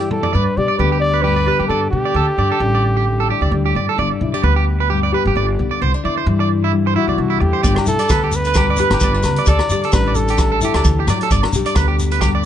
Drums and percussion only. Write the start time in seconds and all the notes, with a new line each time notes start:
0.11 mid tom
0.23 floor tom
7.64 kick, closed hi-hat, shekere
7.76 cross-stick, low agogo
7.86 closed hi-hat, shekere
7.99 closed hi-hat, shekere
8.09 kick, cross-stick, closed hi-hat, low agogo, shekere
8.32 closed hi-hat, shekere
8.44 closed hi-hat, shekere
8.54 kick, cross-stick, closed hi-hat, low agogo, shekere
8.77 closed hi-hat, shekere
8.91 cross-stick, closed hi-hat, low agogo
9.00 kick, closed hi-hat, shekere
9.23 cross-stick, closed hi-hat, low agogo, shekere
9.36 closed hi-hat
9.46 kick, closed hi-hat, shekere
9.59 cross-stick, low agogo
9.70 closed hi-hat, shekere
9.83 closed hi-hat
9.92 kick, cross-stick, closed hi-hat, low agogo, shekere
10.15 closed hi-hat, shekere
10.28 closed hi-hat, shekere
10.38 kick, cross-stick, closed hi-hat, low agogo, shekere
10.61 closed hi-hat, shekere
10.74 cross-stick, closed hi-hat, low agogo
10.84 kick, closed hi-hat, shekere
11.07 cross-stick, closed hi-hat, low agogo, shekere
11.21 closed hi-hat
11.31 kick, closed hi-hat, shekere
11.43 cross-stick, low agogo
11.53 closed hi-hat, shekere
11.66 closed hi-hat, shekere
11.76 kick, cross-stick, closed hi-hat, low agogo, shekere
11.99 closed hi-hat, shekere
12.11 closed hi-hat, shekere
12.21 kick, cross-stick, closed hi-hat, low agogo, shekere